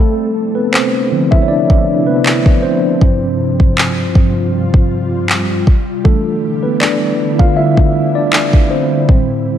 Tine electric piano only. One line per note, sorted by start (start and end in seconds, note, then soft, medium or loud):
0.00 0.53 A3 medium
0.00 0.57 A4 medium
0.55 0.73 B3 medium
0.55 0.74 B4 medium
0.72 1.12 C4 medium
0.72 1.33 C5 medium
1.12 1.63 D3 medium
1.12 1.64 F3 soft
1.12 1.64 C4 medium
1.31 1.43 E4 medium
1.31 1.43 E5 medium
1.42 1.49 C#5 medium
1.48 2.05 D4 medium
1.48 2.09 D5 loud
2.07 2.60 B3 medium
2.07 2.64 B4 medium
2.62 3.01 C4 medium
2.62 4.11 C5 medium
3.02 4.14 G2 medium
3.02 4.15 F3 soft
3.02 4.15 C4 medium
4.16 4.50 G2 soft
4.16 4.50 F3 soft
4.16 4.50 C4 medium
6.05 6.57 E3 medium
6.05 6.57 G3 soft
6.05 6.60 A3 medium
6.05 6.57 D4 medium
6.05 6.65 A4 medium
6.63 6.73 B3 medium
6.63 6.71 B4 medium
6.80 7.36 D4 medium
6.80 7.35 D5 medium
7.39 7.57 F4 medium
7.39 7.57 F5 medium
7.57 8.12 E4 medium
7.57 8.17 E5 loud
8.15 8.68 D4 medium
8.15 8.67 D5 medium
8.70 9.09 C4 medium
8.70 9.58 C5 medium
9.09 9.58 A2 medium
9.09 9.58 G3 medium
9.09 9.58 C4 medium